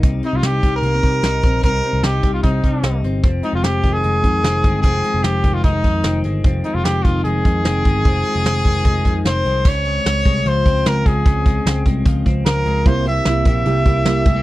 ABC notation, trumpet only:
X:1
M:4/4
L:1/16
Q:1/4=150
K:Fm
V:1 name="Trumpet"
z2 E F G3 B8- B | B4 G3 F E6 z2 | z2 E F G3 A8- A | A4 G3 F E6 z2 |
z2 E F G2 F2 A8- | A12 c4 | d8 c4 B2 A2- | A6 z6 B4 |
c2 =e4 e8- e2 |]